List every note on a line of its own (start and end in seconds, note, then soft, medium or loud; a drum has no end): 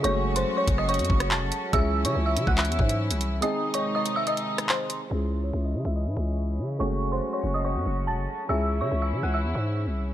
0.00 3.38 F#3 medium
0.00 1.69 A3 medium
0.00 3.38 C#4 medium
0.00 1.70 C#4 medium
0.04 0.45 F#1 loud
0.04 1.70 G#3 medium
0.04 1.71 F#4 medium
0.04 1.70 F#4 medium
0.04 0.34 C#5 medium
0.04 0.34 C#6 loud
0.04 closed hi-hat medium
0.36 0.56 C5 medium
0.36 0.55 C6 medium
0.36 closed hi-hat medium
0.57 0.77 C#5 medium
0.57 0.76 C#6 medium
0.67 1.01 F#1 loud
0.67 kick loud
0.67 closed hi-hat medium
0.78 0.88 D#5 medium
0.78 0.88 D#6 medium
0.78 cross-stick medium
0.89 1.29 C#5 medium
0.89 1.28 C#6 medium
0.89 closed hi-hat medium
0.94 closed hi-hat medium
0.99 1.09 F#2 loud
0.99 closed hi-hat medium
1.05 closed hi-hat medium
1.10 1.32 F#1 loud
1.10 kick loud
1.20 cross-stick loud
1.20 closed hi-hat medium
1.31 1.43 E1 loud
1.31 1.71 A5 medium
1.31 1.71 A6 medium
1.31 clap loud
1.41 1.52 F#1 loud
1.52 closed hi-hat medium
1.72 2.06 C#2 loud
1.72 3.41 E3 medium
1.72 3.38 G#3 medium
1.72 3.39 C#4 medium
1.72 3.41 E4 medium
1.72 3.39 E4 medium
1.72 3.39 G#4 medium
1.72 2.03 E5 medium
1.72 2.03 E6 loud
1.72 kick loud
1.72 closed hi-hat medium
2.05 2.15 C#3 loud
2.05 2.25 C#5 medium
2.05 2.24 C#6 medium
2.05 closed hi-hat medium
2.15 2.38 C#2 loud
2.26 2.46 E5 medium
2.26 2.45 E6 medium
2.37 2.47 C#3 loud
2.37 closed hi-hat medium
2.47 2.70 C#2 loud
2.47 2.57 F#5 medium
2.47 2.57 F#6 medium
2.47 kick medium
2.58 3.39 E5 medium
2.58 3.38 E6 medium
2.58 clap loud
2.58 closed hi-hat soft
2.65 2.78 E2 loud
2.65 closed hi-hat medium
2.72 closed hi-hat medium
2.79 3.12 G#2 loud
2.79 kick loud
2.89 closed hi-hat medium
3.11 3.41 C2 loud
3.11 closed hi-hat medium
3.21 closed hi-hat medium
3.41 5.10 C3 medium
3.41 5.10 D#3 medium
3.41 5.07 G#3 medium
3.41 5.10 G#3 medium
3.41 5.08 C4 medium
3.41 5.10 D#4 loud
3.41 5.08 D#4 medium
3.41 5.09 G#4 medium
3.41 3.72 D#5 medium
3.41 3.72 D#6 loud
3.41 closed hi-hat medium
3.74 3.94 C#5 medium
3.74 3.93 C#6 medium
3.74 closed hi-hat medium
3.95 4.15 D#5 medium
3.95 4.14 D#6 medium
4.06 closed hi-hat medium
4.16 4.26 E5 medium
4.16 4.26 E6 medium
4.27 4.67 D#5 medium
4.27 4.67 D#6 medium
4.27 closed hi-hat medium
4.37 closed hi-hat medium
4.58 cross-stick medium
4.58 closed hi-hat medium
4.69 5.09 C5 medium
4.69 5.09 C6 medium
4.69 clap loud
4.90 closed hi-hat medium
5.10 5.52 C#2 loud
5.10 6.79 E3 medium
5.10 6.76 G#3 medium
5.10 6.77 C#4 medium
5.10 10.14 C#4 medium
5.10 6.79 E4 medium
5.10 6.77 E4 medium
5.10 6.77 G#4 medium
5.10 5.41 E5 medium
5.10 5.41 E6 loud
5.43 5.63 C#5 medium
5.43 5.62 C#6 medium
5.53 5.76 C#2 loud
5.64 5.84 D#5 medium
5.64 5.83 D#6 medium
5.75 5.85 C#3 medium
5.85 6.08 C#2 loud
5.85 5.95 E5 medium
5.85 5.95 E6 medium
5.96 6.77 D#5 medium
5.96 6.76 D#6 medium
6.06 6.16 G#2 loud
6.17 6.61 C#2 loud
6.59 6.79 C#3 loud
6.79 7.21 F#1 loud
6.79 8.48 F#3 medium
6.79 8.46 G#3 medium
6.79 8.45 A3 medium
6.79 8.46 C#4 medium
6.79 8.48 F#4 medium
6.79 8.46 F#4 medium
6.79 7.10 C#5 medium
6.79 7.10 C#6 loud
7.12 7.32 C5 medium
7.12 7.31 C6 medium
7.33 7.53 C#5 medium
7.33 7.52 C#6 medium
7.44 7.77 F#1 loud
7.54 7.64 D#5 medium
7.54 7.64 D#6 medium
7.65 8.05 C#5 medium
7.65 8.04 C#6 medium
7.75 7.85 F#2 loud
7.86 8.08 F#1 loud
8.07 8.19 E1 loud
8.07 8.47 A5 medium
8.07 8.47 A6 medium
8.18 8.28 F#1 loud
8.48 8.82 C#2 loud
8.48 10.14 E3 medium
8.48 10.14 G#3 medium
8.48 10.14 C#4 medium
8.48 10.14 E4 medium
8.48 10.14 G#4 medium
8.48 8.79 E5 medium
8.48 8.79 E6 loud
8.81 8.91 C#3 loud
8.81 9.01 C#5 medium
8.81 9.00 C#6 medium
8.91 9.14 C#2 loud
9.02 9.22 E5 medium
9.02 9.21 E6 medium
9.13 9.23 C#3 loud
9.23 9.46 C#2 loud
9.23 9.33 F#5 medium
9.23 9.33 F#6 medium
9.34 10.14 E5 medium
9.34 10.14 E6 medium
9.44 9.54 E2 loud
9.55 9.88 G#2 loud
9.87 10.14 C2 medium